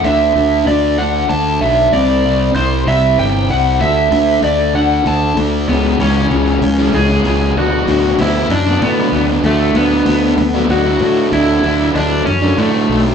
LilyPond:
<<
  \new Staff \with { instrumentName = "Electric slide guitar" } { \time 3/4 \key d \lydian \tempo 4 = 96 e''4 d''8 fis''8 a''8 e''8 | d''4 c''8 e''8 g''8 fis''8 | e''4 d''8 fis''8 a''8 r8 | b8 cis'4. gis'4 |
fis'4 e'8 d'8 b8. r16 | a8 b4. fis'4 | e'4 d'8 cis'8 a8. r16 | }
  \new Staff \with { instrumentName = "Distorted electric guitar" } { \clef bass \time 3/4 \key d \lydian <d a d'>8 <d a d'>8 <d a d'>8 <d a d'>8 <d a d'>8 <d a d'>8 | <c g c'>8 <c g c'>8 <c g c'>8 <c g c'>8 <c g c'>8 <c g c'>8 | <d a d'>8 <d a d'>8 <d a d'>8 <d a d'>8 <d a d'>8 <d a d'>8 | <cis e gis cis'>8 <cis e gis cis'>8 <cis e gis cis'>8. <e gis cis'>16 <cis e gis cis'>16 <e gis cis'>16 <cis e gis cis'>8 |
<d fis b d'>8 <d fis b d'>8 <d fis b d'>8. <fis b d'>16 <d fis b d'>16 <fis b d'>16 <d fis b d'>8 | <d fis a d'>8 <d fis a d'>8 <d fis a d'>8. <fis a d'>16 <d fis a d'>16 <fis a d'>16 <d fis a d'>8 | <d fis a d'>8 <d fis a d'>8 <d fis a d'>8. <fis a d'>16 <d fis a d'>16 <fis a d'>16 <d fis a d'>8 | }
  \new Staff \with { instrumentName = "Fingered electric bass" } { \clef bass \time 3/4 \key d \lydian d,8 d,8 d,4 d,8 b,,8 | c,4 c,8 c,8 g,,8 c,8 | d,8 d,8 d,4 d,8 d,8 | cis,8 cis,8 cis,8 cis,8 cis,8 cis,8 |
d,8 d,8 d,8 fis,8 a,8 d,8 | d,8 d,8 d,8 d,8 d,8 a,8 | d,8 d,8 d,8 fis,8 a,8 b,,8 | }
>>